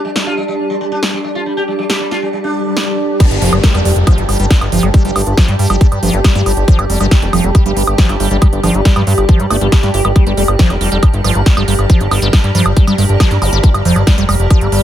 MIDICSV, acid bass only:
0, 0, Header, 1, 2, 480
1, 0, Start_track
1, 0, Key_signature, -2, "minor"
1, 0, Tempo, 434783
1, 1614, Time_signature, 4, 2, 24, 8
1, 16372, End_track
2, 0, Start_track
2, 0, Title_t, "Acid bass"
2, 0, Program_c, 0, 38
2, 3534, Note_on_c, 0, 55, 84
2, 3601, Note_off_c, 0, 55, 0
2, 3774, Note_on_c, 0, 53, 105
2, 3894, Note_on_c, 0, 55, 104
2, 3910, Note_off_c, 0, 53, 0
2, 3961, Note_off_c, 0, 55, 0
2, 4014, Note_on_c, 0, 55, 84
2, 4115, Note_off_c, 0, 55, 0
2, 4134, Note_on_c, 0, 55, 101
2, 4201, Note_off_c, 0, 55, 0
2, 4254, Note_on_c, 0, 55, 77
2, 4321, Note_off_c, 0, 55, 0
2, 4493, Note_on_c, 0, 53, 99
2, 4613, Note_on_c, 0, 55, 105
2, 4630, Note_off_c, 0, 53, 0
2, 4681, Note_off_c, 0, 55, 0
2, 4734, Note_on_c, 0, 55, 78
2, 4835, Note_off_c, 0, 55, 0
2, 4853, Note_on_c, 0, 55, 104
2, 4921, Note_off_c, 0, 55, 0
2, 4974, Note_on_c, 0, 55, 81
2, 5041, Note_off_c, 0, 55, 0
2, 5213, Note_on_c, 0, 53, 101
2, 5334, Note_on_c, 0, 55, 103
2, 5350, Note_off_c, 0, 53, 0
2, 5401, Note_off_c, 0, 55, 0
2, 5454, Note_on_c, 0, 55, 89
2, 5555, Note_off_c, 0, 55, 0
2, 5573, Note_on_c, 0, 55, 103
2, 5641, Note_off_c, 0, 55, 0
2, 5694, Note_on_c, 0, 55, 80
2, 5761, Note_off_c, 0, 55, 0
2, 5934, Note_on_c, 0, 53, 107
2, 6053, Note_on_c, 0, 55, 103
2, 6070, Note_off_c, 0, 53, 0
2, 6121, Note_off_c, 0, 55, 0
2, 6173, Note_on_c, 0, 55, 78
2, 6275, Note_off_c, 0, 55, 0
2, 6293, Note_on_c, 0, 55, 105
2, 6361, Note_off_c, 0, 55, 0
2, 6414, Note_on_c, 0, 55, 82
2, 6481, Note_off_c, 0, 55, 0
2, 6653, Note_on_c, 0, 53, 106
2, 6774, Note_on_c, 0, 55, 100
2, 6790, Note_off_c, 0, 53, 0
2, 6841, Note_off_c, 0, 55, 0
2, 6893, Note_on_c, 0, 55, 86
2, 6995, Note_off_c, 0, 55, 0
2, 7013, Note_on_c, 0, 55, 106
2, 7081, Note_off_c, 0, 55, 0
2, 7133, Note_on_c, 0, 55, 76
2, 7201, Note_off_c, 0, 55, 0
2, 7373, Note_on_c, 0, 53, 101
2, 7493, Note_on_c, 0, 55, 104
2, 7510, Note_off_c, 0, 53, 0
2, 7561, Note_off_c, 0, 55, 0
2, 7613, Note_on_c, 0, 55, 77
2, 7715, Note_off_c, 0, 55, 0
2, 7734, Note_on_c, 0, 55, 102
2, 7801, Note_off_c, 0, 55, 0
2, 7854, Note_on_c, 0, 55, 86
2, 7921, Note_off_c, 0, 55, 0
2, 8094, Note_on_c, 0, 53, 102
2, 8214, Note_on_c, 0, 55, 104
2, 8230, Note_off_c, 0, 53, 0
2, 8281, Note_off_c, 0, 55, 0
2, 8333, Note_on_c, 0, 55, 83
2, 8435, Note_off_c, 0, 55, 0
2, 8453, Note_on_c, 0, 55, 105
2, 8521, Note_off_c, 0, 55, 0
2, 8574, Note_on_c, 0, 55, 77
2, 8641, Note_off_c, 0, 55, 0
2, 8814, Note_on_c, 0, 53, 100
2, 8934, Note_on_c, 0, 55, 103
2, 8950, Note_off_c, 0, 53, 0
2, 9001, Note_off_c, 0, 55, 0
2, 9053, Note_on_c, 0, 55, 77
2, 9155, Note_off_c, 0, 55, 0
2, 9173, Note_on_c, 0, 55, 101
2, 9241, Note_off_c, 0, 55, 0
2, 9293, Note_on_c, 0, 55, 86
2, 9361, Note_off_c, 0, 55, 0
2, 9533, Note_on_c, 0, 53, 105
2, 9653, Note_on_c, 0, 55, 106
2, 9670, Note_off_c, 0, 53, 0
2, 9721, Note_off_c, 0, 55, 0
2, 9773, Note_on_c, 0, 55, 86
2, 9875, Note_off_c, 0, 55, 0
2, 9893, Note_on_c, 0, 55, 101
2, 9961, Note_off_c, 0, 55, 0
2, 10013, Note_on_c, 0, 55, 78
2, 10081, Note_off_c, 0, 55, 0
2, 10253, Note_on_c, 0, 53, 102
2, 10373, Note_on_c, 0, 55, 109
2, 10389, Note_off_c, 0, 53, 0
2, 10441, Note_off_c, 0, 55, 0
2, 10493, Note_on_c, 0, 57, 101
2, 10561, Note_off_c, 0, 57, 0
2, 10613, Note_on_c, 0, 55, 77
2, 10681, Note_off_c, 0, 55, 0
2, 10733, Note_on_c, 0, 55, 83
2, 10801, Note_off_c, 0, 55, 0
2, 10973, Note_on_c, 0, 67, 76
2, 11075, Note_off_c, 0, 67, 0
2, 11093, Note_on_c, 0, 55, 76
2, 11134, Note_off_c, 0, 55, 0
2, 11213, Note_on_c, 0, 55, 86
2, 11315, Note_off_c, 0, 55, 0
2, 11333, Note_on_c, 0, 55, 105
2, 11401, Note_off_c, 0, 55, 0
2, 11453, Note_on_c, 0, 55, 80
2, 11521, Note_off_c, 0, 55, 0
2, 11693, Note_on_c, 0, 53, 106
2, 11813, Note_on_c, 0, 55, 101
2, 11830, Note_off_c, 0, 53, 0
2, 11881, Note_off_c, 0, 55, 0
2, 11933, Note_on_c, 0, 55, 77
2, 12035, Note_off_c, 0, 55, 0
2, 12053, Note_on_c, 0, 55, 103
2, 12121, Note_off_c, 0, 55, 0
2, 12173, Note_on_c, 0, 55, 84
2, 12241, Note_off_c, 0, 55, 0
2, 12413, Note_on_c, 0, 53, 105
2, 12533, Note_on_c, 0, 55, 104
2, 12550, Note_off_c, 0, 53, 0
2, 12601, Note_off_c, 0, 55, 0
2, 12653, Note_on_c, 0, 55, 85
2, 12755, Note_off_c, 0, 55, 0
2, 12773, Note_on_c, 0, 55, 101
2, 12841, Note_off_c, 0, 55, 0
2, 12894, Note_on_c, 0, 55, 78
2, 12961, Note_off_c, 0, 55, 0
2, 13133, Note_on_c, 0, 53, 106
2, 13254, Note_on_c, 0, 55, 102
2, 13270, Note_off_c, 0, 53, 0
2, 13321, Note_off_c, 0, 55, 0
2, 13374, Note_on_c, 0, 55, 79
2, 13475, Note_off_c, 0, 55, 0
2, 13494, Note_on_c, 0, 55, 105
2, 13561, Note_off_c, 0, 55, 0
2, 13613, Note_on_c, 0, 55, 87
2, 13681, Note_off_c, 0, 55, 0
2, 13853, Note_on_c, 0, 53, 101
2, 13973, Note_on_c, 0, 55, 102
2, 13989, Note_off_c, 0, 53, 0
2, 14041, Note_off_c, 0, 55, 0
2, 14093, Note_on_c, 0, 55, 84
2, 14195, Note_off_c, 0, 55, 0
2, 14213, Note_on_c, 0, 55, 105
2, 14281, Note_off_c, 0, 55, 0
2, 14333, Note_on_c, 0, 55, 75
2, 14401, Note_off_c, 0, 55, 0
2, 14573, Note_on_c, 0, 53, 102
2, 14694, Note_on_c, 0, 55, 105
2, 14710, Note_off_c, 0, 53, 0
2, 14761, Note_off_c, 0, 55, 0
2, 14813, Note_on_c, 0, 55, 75
2, 14915, Note_off_c, 0, 55, 0
2, 14933, Note_on_c, 0, 55, 100
2, 15001, Note_off_c, 0, 55, 0
2, 15054, Note_on_c, 0, 55, 85
2, 15121, Note_off_c, 0, 55, 0
2, 15294, Note_on_c, 0, 53, 105
2, 15413, Note_on_c, 0, 55, 103
2, 15430, Note_off_c, 0, 53, 0
2, 15481, Note_off_c, 0, 55, 0
2, 15533, Note_on_c, 0, 55, 88
2, 15635, Note_off_c, 0, 55, 0
2, 15654, Note_on_c, 0, 55, 101
2, 15721, Note_off_c, 0, 55, 0
2, 15773, Note_on_c, 0, 55, 77
2, 15841, Note_off_c, 0, 55, 0
2, 16013, Note_on_c, 0, 53, 101
2, 16134, Note_on_c, 0, 55, 106
2, 16150, Note_off_c, 0, 53, 0
2, 16201, Note_off_c, 0, 55, 0
2, 16253, Note_on_c, 0, 55, 78
2, 16355, Note_off_c, 0, 55, 0
2, 16372, End_track
0, 0, End_of_file